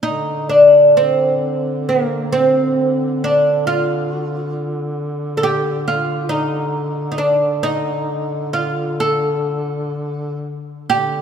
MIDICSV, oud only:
0, 0, Header, 1, 2, 480
1, 0, Start_track
1, 0, Tempo, 931677
1, 10, Time_signature, 3, 2, 24, 8
1, 970, Tempo, 884956
1, 4330, Tempo, 931677
1, 5947, End_track
2, 0, Start_track
2, 0, Title_t, "Oud"
2, 0, Program_c, 0, 24
2, 14, Note_on_c, 0, 63, 78
2, 253, Note_off_c, 0, 63, 0
2, 255, Note_on_c, 0, 62, 73
2, 499, Note_on_c, 0, 60, 75
2, 505, Note_off_c, 0, 62, 0
2, 970, Note_off_c, 0, 60, 0
2, 972, Note_on_c, 0, 58, 68
2, 1208, Note_off_c, 0, 58, 0
2, 1210, Note_on_c, 0, 60, 87
2, 1706, Note_on_c, 0, 62, 81
2, 1709, Note_off_c, 0, 60, 0
2, 1936, Note_off_c, 0, 62, 0
2, 1939, Note_on_c, 0, 65, 85
2, 2188, Note_off_c, 0, 65, 0
2, 2188, Note_on_c, 0, 66, 85
2, 2253, Note_off_c, 0, 66, 0
2, 2253, Note_on_c, 0, 65, 85
2, 2324, Note_off_c, 0, 65, 0
2, 2324, Note_on_c, 0, 66, 85
2, 2394, Note_off_c, 0, 66, 0
2, 2394, Note_on_c, 0, 65, 85
2, 2635, Note_off_c, 0, 65, 0
2, 2863, Note_on_c, 0, 69, 68
2, 2893, Note_off_c, 0, 69, 0
2, 2896, Note_on_c, 0, 67, 86
2, 3134, Note_off_c, 0, 67, 0
2, 3136, Note_on_c, 0, 65, 78
2, 3360, Note_off_c, 0, 65, 0
2, 3362, Note_on_c, 0, 63, 83
2, 3802, Note_off_c, 0, 63, 0
2, 3808, Note_on_c, 0, 63, 61
2, 3844, Note_on_c, 0, 62, 73
2, 3845, Note_off_c, 0, 63, 0
2, 4088, Note_on_c, 0, 63, 84
2, 4094, Note_off_c, 0, 62, 0
2, 4545, Note_off_c, 0, 63, 0
2, 4565, Note_on_c, 0, 65, 78
2, 4804, Note_off_c, 0, 65, 0
2, 4806, Note_on_c, 0, 69, 84
2, 5515, Note_off_c, 0, 69, 0
2, 5782, Note_on_c, 0, 67, 93
2, 5947, Note_off_c, 0, 67, 0
2, 5947, End_track
0, 0, End_of_file